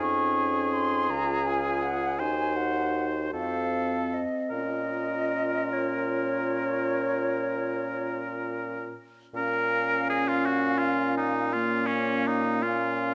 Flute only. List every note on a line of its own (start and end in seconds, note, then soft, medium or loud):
0.01 0.75 C#6 medium
0.73 1.12 C6 medium
1.10 1.48 A#5 medium
1.47 1.85 G#5 medium
1.83 2.21 F#5 medium
2.19 2.58 G#5 medium
2.56 3.06 F#5 medium
3.36 4.15 F5 medium
4.14 4.54 D#5 medium
4.54 5.74 D#5 medium
5.73 8.16 C#5 soft
9.34 11.50 F5 soft
11.57 12.63 F5 medium
12.66 13.14 F5 soft